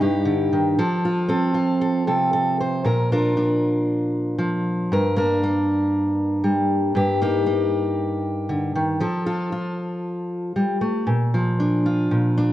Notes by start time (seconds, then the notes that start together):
Already playing: G3 D4 D#4
0.01 G2 G4
0.26 D3
0.53 D#3
0.79 F3 A4
1.05 F4
1.29 C4 A4
1.55 F4
1.82 A4
2.07 C3 A4
2.33 A4
2.60 C5
2.84 A#2 A#4
3.12 D4 F4 A#4
3.37 D4
4.38 F3
4.92 G2 A#4
5.16 A#3 D4 A#4
5.43 A#3
6.44 G3
6.95 G2 G4
7.21 A#3 D#4 G4
7.46 A#3
8.49 D3
8.76 D#3
9.00 F3 A4
9.26 F4 A4
9.52 F4
10.56 G3
10.81 A3
11.07 A#2
11.34 F3
11.60 D4
11.86 F4
12.11 A#2
12.38 D4